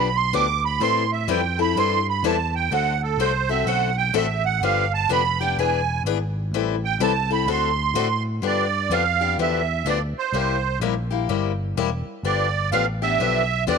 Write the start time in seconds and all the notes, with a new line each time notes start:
Already playing: B1 B5
0.17 C6
0.33 D2 D3 F3 B3 D4 G4 D6
0.65 B5
0.80 A2 E3 G3 C4 E4 A4 C6
1.12 E5
1.28 F2 E3 G3 C4 E4 A4 G5
1.59 C4 E4 A4 B5
1.76 G2 E3 G3 C4 E4 A4 C6
2.09 B5
2.23 E2 E3 G3 C4 E4 A4 A5
2.56 G5
2.71 D2 D3 A3 C4 F#4 A4 F#5
3.03 A4
3.18 C2 D3 A3 C4 F#4 A4 C5
3.49 C4 F#4 A4 E5
3.66 B1 D3 A3 C4 F#4 A4 F#5
3.98 G5
4.14 A1 D3 A3 C4 F#4 A4 E5
4.45 F#5
4.61 G1 D3 F3 B3 D4 G4 F5
4.94 A5
5.09 F1 D3 F3 B3 D4 G4 B5
5.40 B3 D4 G4 G5
5.57 E1 E3 B3 D4 G#4 G#5
6.04 G#1 E3 B3 D4 G#4
6.51 A1 E3 G3 C4 E4 A4
6.85 G5
6.99 C2 E3 G3 C4 E4 A4 A5
7.30 C4 E4 A4 B5
7.46 D2 D3 A3 C4 F#4 A4
7.51 C6
7.94 A2 D3 A3 C4 F#4 A4
8.42 G2 D3 F3 B3 D4 G4
8.47 D5
8.90 F2 D3 F3 B3 D4 G4 F5
9.21 B3 D4 G4
9.38 E2 D3 F3 B3 D4 G4 E5
9.85 D2 D3 F3 B3 D4 G4 D5
10.15 C5, muted picked electric bass stroke
10.32 C2 C3 G3 A#3 E4 G4
10.80 A#1 C3 G3 A#3 E4 G4
11.11 A#3 E4 G4
11.29 G1 C3 G3 A#3 E4 G4
11.76 E1 C3 G3 A#3 E4 G4
12.05 muted picked electric bass stroke
12.23 G1 D3 F3 B3 D4 G4 D5
12.71 A1 D3 F3 B3 D4 G4 F5
13.02 B3 D4 G4 E5
13.20 B1 D3 F3 B3 D4 G4
13.67 E2 D3 F3 B3 D4 G4 D5